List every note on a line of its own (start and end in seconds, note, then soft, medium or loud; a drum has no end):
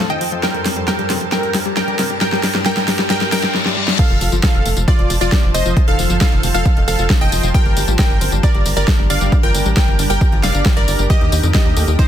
0.00 0.40 F2 medium
0.00 0.40 F3 medium
0.00 0.40 A4 medium
0.00 0.40 C5 medium
0.00 riser medium
0.10 0.16 D#3 medium
0.10 0.37 D#5 medium
0.10 0.37 G5 loud
0.10 0.37 G5 medium
0.10 closed hi-hat soft
0.21 0.27 F3 medium
0.21 open hi-hat loud
0.32 0.41 F3 loud
0.32 closed hi-hat soft
0.43 3.51 G2 medium
0.43 3.51 G3 medium
0.43 0.49 G3 medium
0.43 0.80 A#4 medium
0.43 3.51 A#4 medium
0.43 0.80 G5 medium
0.43 3.51 A5 medium
0.43 snare medium
0.43 closed hi-hat medium
0.54 0.64 G3 medium
0.54 closed hi-hat soft
0.65 0.69 G3 medium
0.65 snare medium
0.65 open hi-hat loud
0.77 0.80 G3 loud
0.77 closed hi-hat soft
0.88 0.94 G3 medium
0.88 1.24 A#4 medium
0.88 1.24 G5 medium
0.88 snare medium
0.88 closed hi-hat medium
0.99 1.08 G3 medium
0.99 closed hi-hat soft
1.10 1.16 C4 medium
1.10 snare medium
1.10 open hi-hat loud
1.21 1.30 G3 medium
1.21 closed hi-hat soft
1.32 1.38 G3 medium
1.32 1.69 A#4 medium
1.32 1.69 G5 medium
1.32 snare medium
1.32 closed hi-hat medium
1.43 1.52 G3 medium
1.43 closed hi-hat soft
1.54 1.58 G3 medium
1.54 snare medium
1.54 open hi-hat loud
1.66 1.69 G3 loud
1.66 closed hi-hat soft
1.77 1.83 G3 medium
1.77 2.13 A#4 medium
1.77 2.13 G5 medium
1.77 snare medium
1.77 closed hi-hat medium
1.88 1.97 G3 loud
1.88 closed hi-hat soft
1.99 2.05 C4 medium
1.99 snare medium
1.99 open hi-hat loud
2.10 2.19 G3 medium
2.10 closed hi-hat soft
2.21 2.27 G3 medium
2.21 2.58 A#4 medium
2.21 2.57 G5 loud
2.21 snare medium
2.21 closed hi-hat medium
2.32 2.41 G3 medium
2.32 snare medium
2.32 closed hi-hat soft
2.43 2.47 G3 medium
2.43 snare medium
2.43 open hi-hat loud
2.54 2.58 G3 loud
2.54 snare medium
2.54 closed hi-hat soft
2.65 2.72 G3 medium
2.65 3.02 A#4 medium
2.65 3.02 G5 loud
2.65 snare loud
2.65 closed hi-hat medium
2.77 2.86 G3 medium
2.77 snare medium
2.77 closed hi-hat soft
2.88 2.91 G3 medium
2.88 snare loud
2.88 open hi-hat loud
2.99 3.03 G3 loud
2.99 snare medium
2.99 closed hi-hat soft
3.10 3.16 G3 medium
3.10 3.30 A#4 medium
3.10 3.30 G5 loud
3.10 3.31 G5 loud
3.10 snare loud
3.10 closed hi-hat medium
3.10 reverse cymbal medium
3.21 3.30 G3 medium
3.21 snare medium
3.21 closed hi-hat soft
3.32 3.38 G3 medium
3.32 3.53 A#4 medium
3.32 3.53 G5 loud
3.32 snare loud
3.32 open hi-hat loud
3.43 3.52 G3 medium
3.43 snare medium
3.43 closed hi-hat soft
3.54 3.61 G3 medium
3.54 snare medium
3.66 3.75 G3 medium
3.66 snare medium
3.77 3.83 G3 medium
3.88 3.97 G3 medium
3.88 snare medium
3.99 7.51 F3 medium
3.99 4.05 F3 medium
3.99 7.51 F4 medium
3.99 4.35 A4 medium
3.99 7.51 C5 medium
3.99 4.35 F5 loud
3.99 9.28 A5 medium
3.99 kick loud
3.99 closed hi-hat medium
3.99 crash loud
3.99 tambourine soft
4.10 4.19 F1 medium
4.10 4.19 F3 medium
4.10 closed hi-hat soft
4.21 4.30 F1 loud
4.21 4.25 F3 medium
4.21 open hi-hat loud
4.21 tambourine medium
4.32 4.41 G1 medium
4.32 4.36 F3 loud
4.32 closed hi-hat soft
4.32 tambourine soft
4.43 4.49 F3 medium
4.43 4.80 A4 medium
4.43 4.80 F5 medium
4.43 4.80 F5 loud
4.43 kick loud
4.43 snare loud
4.43 closed hi-hat medium
4.43 tambourine soft
4.54 4.63 F1 medium
4.54 4.64 F3 loud
4.54 closed hi-hat soft
4.66 4.74 F1 loud
4.66 4.72 A3 medium
4.66 open hi-hat loud
4.66 tambourine medium
4.77 4.85 F1 medium
4.77 4.86 F3 medium
4.77 closed hi-hat soft
4.77 tambourine soft
4.88 4.94 F3 medium
4.88 5.15 F4 medium
4.88 5.15 D5 medium
4.88 kick loud
4.88 closed hi-hat medium
4.88 tambourine soft
4.99 5.07 F1 medium
4.99 5.08 F3 medium
4.99 closed hi-hat soft
5.10 5.18 F1 loud
5.10 5.14 F3 medium
5.10 open hi-hat loud
5.10 tambourine medium
5.21 5.30 F1 medium
5.21 5.25 F3 loud
5.21 5.48 F4 medium
5.21 5.48 D5 medium
5.21 5.48 D5 loud
5.21 tambourine soft
5.32 5.41 G3 medium
5.32 kick loud
5.32 snare loud
5.32 closed hi-hat medium
5.32 tambourine soft
5.43 5.52 F1 medium
5.43 5.53 F3 loud
5.43 closed hi-hat soft
5.54 5.63 F1 loud
5.54 5.61 C4 medium
5.54 5.82 C5 medium
5.54 5.82 D#5 loud
5.54 open hi-hat loud
5.54 tambourine medium
5.66 5.74 F1 medium
5.66 5.75 F3 loud
5.66 closed hi-hat soft
5.66 tambourine soft
5.77 5.83 F3 medium
5.77 kick loud
5.77 closed hi-hat medium
5.77 tambourine soft
5.88 5.96 F1 medium
5.88 5.94 D#3 loud
5.88 6.15 A4 medium
5.88 6.15 F5 loud
5.88 6.15 F5 medium
5.88 closed hi-hat soft
5.99 6.07 F1 loud
5.99 6.05 F3 medium
5.99 open hi-hat loud
5.99 tambourine medium
6.10 6.19 G1 medium
6.10 6.14 F3 loud
6.10 closed hi-hat soft
6.10 tambourine soft
6.21 6.48 A4 medium
6.21 6.48 F5 loud
6.21 6.48 F5 medium
6.21 kick loud
6.21 snare loud
6.21 closed hi-hat medium
6.21 tambourine soft
6.32 6.41 F1 medium
6.32 6.38 D#3 medium
6.32 closed hi-hat soft
6.43 6.52 F1 loud
6.43 6.53 C3 medium
6.43 open hi-hat loud
6.43 tambourine medium
6.54 6.63 F1 loud
6.54 6.64 F3 loud
6.54 6.82 A4 medium
6.54 6.82 F5 loud
6.54 6.82 F5 medium
6.54 closed hi-hat soft
6.54 tambourine soft
6.66 6.72 F3 loud
6.66 kick loud
6.66 closed hi-hat medium
6.66 tambourine soft
6.77 6.85 F1 medium
6.77 6.83 D#3 loud
6.77 closed hi-hat soft
6.88 6.96 F1 loud
6.88 6.97 F3 medium
6.88 7.15 A4 medium
6.88 7.15 F5 loud
6.88 open hi-hat loud
6.88 tambourine medium
6.99 7.07 F1 medium
6.99 7.05 F4 medium
6.99 closed hi-hat soft
6.99 tambourine soft
7.10 7.14 A3 loud
7.10 kick loud
7.10 snare loud
7.10 closed hi-hat medium
7.10 tambourine soft
7.21 7.30 F1 medium
7.21 7.27 D#3 medium
7.21 7.48 D#5 medium
7.21 7.48 G5 loud
7.21 closed hi-hat soft
7.32 7.41 F1 loud
7.32 7.38 F3 medium
7.32 open hi-hat loud
7.32 tambourine medium
7.43 7.52 F1 loud
7.43 7.53 F3 loud
7.43 tambourine soft
7.54 11.07 G3 medium
7.54 7.61 G3 medium
7.54 11.07 D4 medium
7.54 7.91 A#4 medium
7.54 12.08 A#4 medium
7.54 7.91 G5 loud
7.54 kick loud
7.54 closed hi-hat medium
7.54 tambourine soft
7.66 7.74 G1 medium
7.66 7.75 G3 medium
7.66 closed hi-hat soft
7.77 7.85 G1 loud
7.77 7.80 G3 medium
7.77 open hi-hat loud
7.77 tambourine medium
7.88 7.96 A1 medium
7.88 7.92 G3 loud
7.88 closed hi-hat soft
7.88 tambourine soft
7.99 8.05 G3 medium
7.99 8.35 A#4 medium
7.99 8.35 G5 loud
7.99 8.35 G5 medium
7.99 kick loud
7.99 snare loud
7.99 closed hi-hat medium
7.99 tambourine soft
8.10 8.19 G1 medium
8.10 8.19 G3 loud
8.10 closed hi-hat soft
8.21 8.30 G1 loud
8.21 8.27 C4 medium
8.21 open hi-hat loud
8.21 tambourine medium
8.32 8.41 G1 medium
8.32 8.41 G3 medium
8.32 closed hi-hat soft
8.32 tambourine soft
8.43 8.50 G3 medium
8.43 8.71 A#4 medium
8.43 8.71 D5 medium
8.43 8.71 D5 loud
8.43 kick loud
8.43 closed hi-hat medium
8.43 tambourine soft
8.54 8.63 G1 medium
8.54 8.64 G3 medium
8.54 closed hi-hat soft
8.66 8.74 G1 loud
8.66 8.69 G3 medium
8.66 open hi-hat loud
8.66 tambourine medium
8.77 8.85 G1 medium
8.77 8.80 G3 loud
8.77 9.04 A#4 medium
8.77 9.04 D5 medium
8.77 9.04 D5 loud
8.77 tambourine soft
8.88 8.97 A3 medium
8.88 kick loud
8.88 snare loud
8.88 closed hi-hat medium
8.88 tambourine soft
8.99 9.07 G1 medium
8.99 9.08 G3 loud
8.99 closed hi-hat soft
9.10 9.19 G1 loud
9.10 9.16 D4 medium
9.10 9.37 D5 medium
9.10 9.37 F5 loud
9.10 open hi-hat loud
9.10 tambourine medium
9.21 9.30 G1 medium
9.21 9.30 G3 loud
9.21 closed hi-hat soft
9.21 tambourine soft
9.32 9.38 G3 medium
9.32 12.08 G4 medium
9.32 kick loud
9.32 closed hi-hat medium
9.32 tambourine soft
9.43 9.52 G1 medium
9.43 9.49 F3 loud
9.43 9.71 A#4 medium
9.43 9.71 G5 loud
9.43 9.71 G5 medium
9.43 closed hi-hat soft
9.54 9.63 G1 loud
9.54 9.61 G3 medium
9.54 open hi-hat loud
9.54 tambourine medium
9.66 9.74 A1 medium
9.66 9.69 G3 loud
9.66 closed hi-hat soft
9.66 tambourine soft
9.77 9.83 G3 medium
9.77 10.04 A#4 medium
9.77 10.04 G5 loud
9.77 10.04 G5 medium
9.77 kick loud
9.77 snare loud
9.77 closed hi-hat medium
9.77 tambourine soft
9.88 9.96 G1 medium
9.88 9.94 F3 medium
9.88 closed hi-hat soft
9.99 10.07 G1 loud
9.99 10.08 D3 medium
9.99 open hi-hat loud
9.99 tambourine medium
10.10 10.19 G1 medium
10.10 10.19 G3 loud
10.10 10.37 A#4 medium
10.10 10.37 G5 loud
10.10 10.37 G5 medium
10.10 closed hi-hat soft
10.10 tambourine soft
10.21 10.27 G3 loud
10.21 kick loud
10.21 closed hi-hat medium
10.21 tambourine soft
10.32 10.41 G1 medium
10.32 10.38 F3 loud
10.32 closed hi-hat soft
10.43 10.52 F1 loud
10.43 10.53 G3 medium
10.43 10.71 D5 medium
10.43 10.71 F5 medium
10.43 snare medium
10.43 open hi-hat loud
10.43 tambourine medium
10.54 10.63 G1 medium
10.54 10.64 D4 medium
10.54 tambourine soft
10.66 10.72 G4 medium
10.66 kick loud
10.66 snare loud
10.66 closed hi-hat medium
10.66 tambourine soft
10.77 10.85 G1 medium
10.77 10.80 G3 medium
10.77 11.04 A#4 medium
10.77 11.04 D5 loud
10.77 closed hi-hat soft
10.88 10.96 G1 loud
10.88 10.94 D4 medium
10.88 open hi-hat loud
10.88 tambourine medium
10.99 11.08 G1 medium
10.99 11.08 G3 medium
10.99 closed hi-hat soft
10.99 tambourine soft
11.10 11.16 D#3 medium
11.10 12.08 D#3 medium
11.10 12.08 D#4 medium
11.10 11.46 G4 medium
11.10 11.46 D#5 loud
11.10 kick loud
11.10 closed hi-hat medium
11.10 tambourine soft
11.21 11.30 D#2 medium
11.21 11.30 D#3 medium
11.21 closed hi-hat soft
11.32 11.41 D#2 loud
11.32 11.36 D#3 medium
11.32 open hi-hat loud
11.32 tambourine medium
11.43 11.52 F2 loud
11.43 11.47 D#3 loud
11.43 closed hi-hat soft
11.43 tambourine soft
11.54 11.61 D#3 medium
11.54 11.91 G4 medium
11.54 11.91 D#5 medium
11.54 11.91 D#5 loud
11.54 kick loud
11.54 snare loud
11.54 closed hi-hat medium
11.54 tambourine soft
11.66 11.74 D#2 medium
11.66 11.75 D#3 loud
11.66 closed hi-hat soft
11.77 11.85 D#2 loud
11.77 11.83 A3 medium
11.77 open hi-hat loud
11.77 tambourine medium
11.88 11.96 D#2 medium
11.88 11.97 D#3 medium
11.88 closed hi-hat soft
11.88 tambourine soft
11.99 12.05 D#3 medium
11.99 12.08 D#4 medium
11.99 12.08 C5 medium
11.99 12.08 C5 loud
11.99 kick loud
11.99 closed hi-hat medium
11.99 tambourine soft